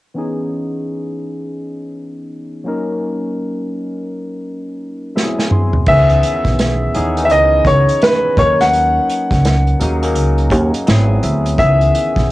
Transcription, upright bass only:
5.88 6.17 C#2 medium
6.46 6.87 B1 medium
6.96 7.31 D#2 medium
7.31 7.61 C#2 medium
7.66 7.84 C#2 medium
8.38 8.97 D#2 medium
9.32 9.72 C#2 medium
9.81 10.17 D#2 medium
10.17 10.51 C#2 medium
10.51 10.70 D#2 medium
10.88 11.18 G#1 loud
11.24 11.53 D2 medium
11.59 11.89 C#2 medium
12.17 12.32 B1 medium

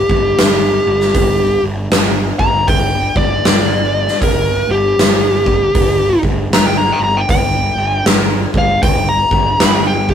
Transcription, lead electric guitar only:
0.00 1.63 G4 medium
2.39 2.67 A#5 loud
2.67 3.14 G5 loud
3.17 4.19 D5 medium
4.23 4.68 A#4 medium
4.71 6.20 G4 loud
6.53 6.66 A#5 loud
6.66 6.76 G5 loud
6.78 7.00 A#5 medium
6.92 6.99 G5 medium
7.04 7.19 A#5 medium
7.17 7.27 G5 medium
7.30 8.04 G5 loud
8.58 8.83 F5 loud
8.83 9.08 G5 medium
9.09 9.84 A#5 loud
9.87 10.14 G5 medium
10.10 10.14 G4 medium

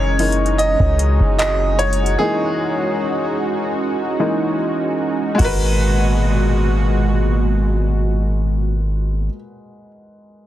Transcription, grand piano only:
0.00 0.19 E3 medium
0.00 0.20 G#3 medium
0.00 0.20 A#3 medium
0.00 0.20 D#4 medium
0.00 5.41 A#4 loud
0.00 0.55 C#5 loud
0.19 0.55 E3 medium
0.19 0.55 G#3 soft
0.19 0.55 A#3 soft
0.19 0.56 D#4 medium
0.58 1.37 D#5 loud
1.39 1.80 D#5 loud
1.79 2.20 C#5 loud
2.19 2.72 E3 medium
2.19 2.73 G#3 soft
2.19 2.73 A#3 medium
2.19 2.73 D#4 medium
2.19 4.95 G#4 medium
4.19 4.55 E3 medium
4.19 4.55 G#3 soft
4.19 4.56 A#3 soft
4.19 4.56 D#4 medium
5.35 9.24 G#3 medium
5.35 9.27 F#4 medium
5.41 9.30 A#4 medium
5.41 9.34 B4 loud

